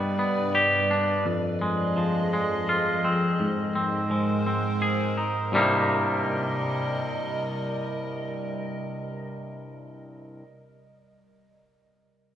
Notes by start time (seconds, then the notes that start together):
Already playing: G2 G3 B3 B4 D5
0.19 B3
0.55 G4
0.91 D4
1.26 F2 F3 G#4 D#5
1.61 G#3
1.97 F3
2.33 G#3
2.69 F4
3.04 C4
3.40 G#2 G#3 A#4 C5
3.75 C4
4.11 G#3
4.46 C4
4.82 G#4
5.17 D#4
5.52 C2 G2 C3 G3 A#3 A#4 D#5
5.56 D#4